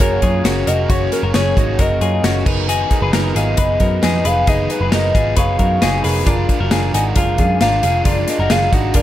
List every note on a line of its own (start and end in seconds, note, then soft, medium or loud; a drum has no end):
0.00 0.18 F#1 loud
0.00 0.43 F#3 soft
0.00 0.44 A#3 soft
0.00 0.45 C#4 medium
0.00 0.22 F#4 loud
0.00 0.23 F#4 medium
0.00 0.22 G#4 loud
0.00 0.46 G#4 medium
0.00 0.22 A#4 medium
0.00 0.45 A#4 loud
0.00 0.23 C#5 medium
0.00 0.69 C#5 loud
0.00 kick loud
0.00 closed hi-hat loud
0.22 0.41 F#2 medium
0.22 0.45 F4 medium
0.22 0.39 F#4 medium
0.22 0.40 G#4 medium
0.22 0.45 G#4 medium
0.22 0.40 C#5 medium
0.22 kick medium
0.22 closed hi-hat medium
0.43 0.63 F#1 medium
0.43 0.67 F#3 medium
0.43 0.66 A#3 medium
0.43 0.66 C#4 medium
0.43 0.68 C#4 medium
0.43 0.61 F#4 medium
0.43 0.67 F#4 medium
0.43 0.62 G#4 medium
0.43 0.65 G#4 medium
0.43 0.62 A#4 loud
0.43 snare loud
0.43 closed hi-hat medium
0.66 0.86 F1 medium
0.66 0.88 F#3 soft
0.66 0.89 A#3 soft
0.66 0.89 C#4 medium
0.66 0.84 F#4 medium
0.66 0.88 F#4 medium
0.66 0.89 G#4 soft
0.66 0.84 G#4 medium
0.66 0.90 A#4 medium
0.66 0.85 A#4 medium
0.66 0.91 D#5 medium
0.66 closed hi-hat medium
0.89 1.08 F#1 loud
0.89 1.11 F#2 medium
0.89 1.12 C#3 medium
0.89 1.12 F#3 medium
0.89 1.12 A#3 medium
0.89 1.12 C#4 medium
0.89 1.22 C#4 medium
0.89 1.06 F#4 medium
0.89 1.21 F#4 loud
0.89 1.07 G#4 medium
0.89 1.11 G#4 medium
0.89 1.12 C#5 loud
0.89 1.07 C#5 loud
0.89 kick loud
0.89 closed hi-hat medium
1.11 1.32 F#3 soft
1.11 1.33 A#3 soft
1.11 1.34 C#4 medium
1.11 1.29 F#4 medium
1.11 1.34 G#4 medium
1.11 1.29 G#4 medium
1.11 1.23 A#4 loud
1.11 1.30 A#4 medium
1.11 snare soft
1.11 closed hi-hat medium
1.23 1.32 F#1 loud
1.23 1.35 F#4 medium
1.23 1.34 A#4 medium
1.33 1.53 F#1 loud
1.33 1.56 F#3 medium
1.33 1.56 A#3 medium
1.33 1.57 C#4 medium
1.33 1.56 C#4 medium
1.33 1.51 F#4 medium
1.33 1.52 G#4 medium
1.33 1.57 G#4 medium
1.33 1.55 G#4 medium
1.33 1.82 C#5 loud
1.33 1.52 C#5 medium
1.33 snare loud
1.33 closed hi-hat medium
1.56 1.75 G#1 medium
1.56 2.22 F#3 soft
1.56 2.23 A#3 soft
1.56 2.24 C#4 medium
1.56 1.80 D#4 medium
1.56 1.74 F#4 medium
1.56 1.79 F#4 medium
1.56 2.25 G#4 medium
1.56 1.74 G#4 medium
1.56 1.75 C#5 medium
1.56 kick loud
1.56 closed hi-hat medium
1.79 1.98 F#1 loud
1.79 1.96 F#4 medium
1.79 2.02 F#4 medium
1.79 1.96 G#4 medium
1.79 2.01 A#4 medium
1.79 1.97 A#4 loud
1.79 2.47 D#5 medium
1.79 kick loud
1.79 closed hi-hat loud
2.00 2.20 F#2 medium
2.00 2.24 F4 medium
2.00 2.18 F#4 medium
2.00 2.19 G#4 medium
2.00 2.24 G#4 medium
2.00 2.19 C#5 medium
2.00 closed hi-hat medium
2.23 2.42 F#1 loud
2.23 2.46 F#3 medium
2.23 2.47 A#3 medium
2.23 2.47 C#4 medium
2.23 2.46 C#4 medium
2.23 2.41 F#4 medium
2.23 2.46 F#4 medium
2.23 2.41 G#4 medium
2.23 2.44 G#4 medium
2.23 2.42 C#5 medium
2.23 snare loud
2.23 closed hi-hat medium
2.45 2.83 F#1 medium
2.45 2.68 F#3 soft
2.45 2.69 B3 medium
2.45 2.82 D#4 medium
2.45 2.69 D#4 medium
2.45 2.68 D#4 medium
2.45 2.68 G#4 medium
2.45 2.82 G#4 medium
2.45 2.68 A#4 medium
2.45 2.82 B4 loud
2.45 kick loud
2.45 crash medium
2.69 2.91 F#2 medium
2.69 2.91 D#3 medium
2.69 2.91 F#3 medium
2.69 2.92 B3 medium
2.69 3.01 D#4 medium
2.69 2.91 D#4 medium
2.69 3.00 G#4 loud
2.69 2.90 G#4 medium
2.69 closed hi-hat loud
2.90 3.12 F#3 medium
2.90 3.13 B3 medium
2.90 3.08 D#4 medium
2.90 3.13 D#4 soft
2.90 3.13 G#4 medium
2.90 3.08 G#4 medium
2.90 3.09 A#4 medium
2.90 kick medium
2.90 closed hi-hat medium
3.02 3.11 F#1 loud
3.02 3.14 G#4 medium
3.02 3.13 B4 medium
3.12 3.32 F#1 loud
3.12 3.35 F#3 medium
3.12 3.35 B3 medium
3.12 3.30 D#4 medium
3.12 3.36 D#4 medium
3.12 3.34 D#4 medium
3.12 3.30 G#4 medium
3.12 3.34 G#4 medium
3.12 3.36 A#4 medium
3.12 3.31 B4 medium
3.12 snare loud
3.12 closed hi-hat medium
3.34 3.54 G#1 medium
3.34 4.01 F#3 soft
3.34 4.02 B3 soft
3.34 3.52 D#4 medium
3.34 4.02 D#4 medium
3.34 3.59 F4 medium
3.34 4.04 G#4 soft
3.34 3.53 G#4 medium
3.34 3.58 G#4 medium
3.34 3.53 B4 medium
3.34 4.28 D#5 loud
3.34 closed hi-hat medium
3.57 3.76 F#1 loud
3.57 3.75 D#4 loud
3.57 3.75 G#4 medium
3.57 3.81 G#4 medium
3.57 3.80 B4 medium
3.57 3.76 B4 loud
3.57 kick loud
3.57 closed hi-hat loud
3.80 3.99 F#2 medium
3.80 3.97 D#4 medium
3.80 4.03 F#4 medium
3.80 3.98 G#4 medium
3.80 4.03 A#4 medium
3.80 3.98 B4 medium
3.80 kick medium
3.80 closed hi-hat medium
4.02 4.21 F2 loud
4.02 4.25 F#3 medium
4.02 4.25 B3 medium
4.02 4.20 D#4 medium
4.02 4.24 D#4 medium
4.02 4.26 D#4 medium
4.02 4.20 G#4 medium
4.02 4.25 G#4 medium
4.02 4.23 G#4 medium
4.02 4.21 B4 medium
4.02 snare loud
4.02 closed hi-hat medium
4.24 4.43 F1 medium
4.24 4.47 F#3 soft
4.24 4.47 B3 soft
4.24 4.42 D#4 medium
4.24 4.47 D#4 soft
4.24 4.47 G#4 medium
4.24 4.42 G#4 medium
4.24 4.46 G#4 medium
4.24 4.48 B4 medium
4.24 4.43 B4 medium
4.24 4.50 F5 loud
4.24 closed hi-hat medium
4.47 4.66 F#1 medium
4.47 4.70 F#2 medium
4.47 4.70 D#3 medium
4.47 4.70 F#3 medium
4.47 4.70 B3 medium
4.47 4.65 D#4 loud
4.47 4.69 D#4 medium
4.47 4.80 D#4 medium
4.47 4.79 G#4 loud
4.47 4.65 G#4 loud
4.47 4.68 G#4 medium
4.47 4.65 B4 loud
4.47 4.70 D#5 loud
4.47 kick loud
4.47 closed hi-hat loud
4.69 4.90 F#3 soft
4.69 4.91 B3 soft
4.69 4.87 D#4 medium
4.69 4.92 D#4 soft
4.69 4.92 G#4 soft
4.69 4.87 G#4 medium
4.69 4.91 B4 loud
4.69 4.88 B4 medium
4.69 closed hi-hat medium
4.81 4.90 F#1 loud
4.81 4.93 G#4 medium
4.81 4.91 B4 medium
4.92 5.11 F#1 loud
4.92 5.14 F#3 medium
4.92 5.15 B3 medium
4.92 5.09 D#4 medium
4.92 5.15 D#4 medium
4.92 5.14 D#4 medium
4.92 5.10 G#4 medium
4.92 5.13 G#4 medium
4.92 5.14 A#4 medium
4.92 5.10 B4 medium
4.92 5.35 D#5 loud
4.92 snare loud
4.92 closed hi-hat medium
5.14 5.33 G#1 medium
5.14 5.80 F#3 soft
5.14 5.81 B3 soft
5.14 5.32 D#4 medium
5.14 5.82 D#4 soft
5.14 5.37 F4 medium
5.14 5.84 G#4 medium
5.14 5.36 G#4 medium
5.14 5.32 G#4 medium
5.14 5.33 B4 medium
5.14 kick loud
5.14 closed hi-hat medium
5.37 5.56 F#1 loud
5.37 5.54 D#4 loud
5.37 5.54 G#4 medium
5.37 5.60 G#4 medium
5.37 5.59 B4 medium
5.37 5.55 C#5 loud
5.37 6.01 F5 loud
5.37 kick loud
5.37 closed hi-hat loud
5.58 5.78 F#2 medium
5.58 5.76 D#4 medium
5.58 5.81 F#4 medium
5.58 5.77 G#4 medium
5.58 5.82 A#4 medium
5.58 5.77 B4 medium
5.58 kick medium
5.58 closed hi-hat medium
5.81 6.00 F#1 loud
5.81 6.04 F#3 medium
5.81 6.05 B3 medium
5.81 5.99 D#4 medium
5.81 6.05 D#4 medium
5.81 6.04 D#4 medium
5.81 6.03 G#4 medium
5.81 5.99 G#4 medium
5.81 6.03 G#4 medium
5.81 5.99 B4 medium
5.81 snare loud
5.81 closed hi-hat medium
6.03 6.23 F1 medium
6.03 6.26 F#3 soft
6.03 6.27 B3 medium
6.03 6.21 D#4 medium
6.03 6.27 D#4 medium
6.03 6.26 G#4 medium
6.03 6.21 G#4 medium
6.03 6.26 G#4 medium
6.03 6.22 A#4 loud
6.03 6.26 B4 medium
6.03 open hi-hat medium
6.26 6.45 F#1 medium
6.26 6.49 F#2 medium
6.26 6.49 F3 medium
6.26 6.49 G#3 medium
6.26 6.44 D4 loud
6.26 6.58 D4 medium
6.26 6.49 D4 medium
6.26 6.58 F4 medium
6.26 6.48 F4 medium
6.26 6.44 G#4 loud
6.26 6.44 A#4 loud
6.26 6.47 A#4 medium
6.26 kick loud
6.26 closed hi-hat loud
6.48 6.70 G#3 soft
6.48 6.66 D4 medium
6.48 6.71 D4 medium
6.48 6.71 F4 medium
6.48 6.66 G#4 medium
6.48 6.71 A#4 medium
6.48 6.66 A#4 medium
6.48 kick medium
6.48 closed hi-hat medium
6.60 6.69 F#1 medium
6.60 6.71 F#4 medium
6.60 6.71 A#4 medium
6.70 6.90 F#1 medium
6.70 6.94 G#3 medium
6.70 6.88 D4 medium
6.70 6.94 D4 medium
6.70 6.94 F4 medium
6.70 6.88 G#4 medium
6.70 6.94 G#4 medium
6.70 6.89 A#4 loud
6.70 6.93 A#4 medium
6.70 snare loud
6.70 closed hi-hat medium
6.93 7.12 G#1 medium
6.93 7.60 G#3 soft
6.93 7.11 D4 medium
6.93 7.60 D4 soft
6.93 7.17 D#4 medium
6.93 7.62 F4 soft
6.93 7.16 F#4 medium
6.93 7.11 G#4 medium
6.93 7.61 A#4 medium
6.93 7.11 A#4 medium
6.93 7.04 G#5 loud
6.93 closed hi-hat medium
7.15 7.40 F#1 loud
7.15 7.33 D4 loud
7.15 7.38 F4 medium
7.15 7.33 G#4 loud
7.15 7.39 A#4 medium
7.15 7.34 A#4 loud
7.15 7.58 F5 loud
7.15 kick loud
7.15 closed hi-hat loud
7.38 7.57 F#2 medium
7.38 7.55 D4 medium
7.38 7.60 F4 medium
7.38 7.56 G#4 medium
7.38 7.61 G#4 medium
7.38 7.56 A#4 medium
7.38 kick medium
7.38 closed hi-hat medium
7.60 7.79 G#1 medium
7.60 7.83 G#3 medium
7.60 7.78 D4 medium
7.60 7.83 D4 medium
7.60 7.84 D4 medium
7.60 7.83 F4 medium
7.60 7.78 G#4 medium
7.60 7.78 A#4 medium
7.60 7.82 A#4 medium
7.60 8.02 F5 loud
7.60 snare loud
7.60 closed hi-hat medium
7.82 8.02 F1 medium
7.82 8.04 G#3 soft
7.82 8.00 D4 medium
7.82 8.05 D4 soft
7.82 8.05 F4 medium
7.82 8.00 G#4 medium
7.82 8.06 G#4 medium
7.82 8.05 A#4 soft
7.82 8.01 A#4 medium
7.82 closed hi-hat medium
8.04 8.24 F#1 loud
8.04 8.27 F#2 medium
8.04 8.28 F3 medium
8.04 8.28 G#3 medium
8.04 8.22 D4 loud
8.04 8.28 D4 medium
8.04 8.38 D4 medium
8.04 8.37 F4 loud
8.04 8.27 F4 medium
8.04 8.23 G#4 loud
8.04 8.23 A#4 loud
8.04 8.26 A#4 medium
8.04 8.30 D5 loud
8.04 kick loud
8.04 closed hi-hat loud
8.27 8.48 G#3 soft
8.27 8.44 D4 medium
8.27 8.49 D4 soft
8.27 8.50 F4 soft
8.27 8.45 G#4 medium
8.27 8.50 A#4 medium
8.27 8.45 A#4 medium
8.27 8.53 D#5 medium
8.27 snare soft
8.27 closed hi-hat medium
8.39 8.48 F#1 medium
8.39 8.50 F#4 medium
8.39 8.51 A#4 medium
8.49 8.68 F#1 loud
8.49 8.72 G#3 medium
8.49 8.67 D4 medium
8.49 8.73 D4 medium
8.49 8.72 F4 medium
8.49 8.73 F4 medium
8.49 8.67 G#4 medium
8.49 8.73 G#4 medium
8.49 8.68 A#4 medium
8.49 8.71 A#4 medium
8.49 8.75 F5 medium
8.49 snare loud
8.49 closed hi-hat medium
8.71 8.91 G#1 medium
8.71 9.02 G#3 soft
8.71 8.89 D4 medium
8.71 9.02 D4 soft
8.71 8.96 D#4 medium
8.71 9.02 F4 soft
8.71 8.95 F#4 medium
8.71 8.90 G#4 medium
8.71 9.02 A#4 medium
8.71 8.90 A#4 medium
8.71 8.95 F#5 medium
8.71 kick medium
8.71 closed hi-hat medium
8.94 9.02 F#1 loud
8.94 9.02 D4 loud
8.94 9.02 F4 medium
8.94 9.02 G#4 medium
8.94 9.02 A#4 medium
8.94 9.02 A#4 loud
8.94 9.02 D5 medium
8.94 kick loud
8.94 closed hi-hat loud